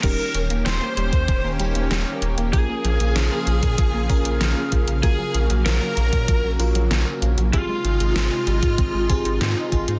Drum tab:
CC |x---------------|----------------|----------------|----------------|
HH |x-xxx-xxx-xxx-xx|x-xxx-xxx-xxx-xx|x-xxx-xxx-xxx-xx|x-xxx-xxx-xxx-xx|
SD |----o-------o---|----o-------o---|----o-------o---|----o-------o---|
BD |o------oo-------|o------oo-o---o-|o------oo-------|o------oo-o---o-|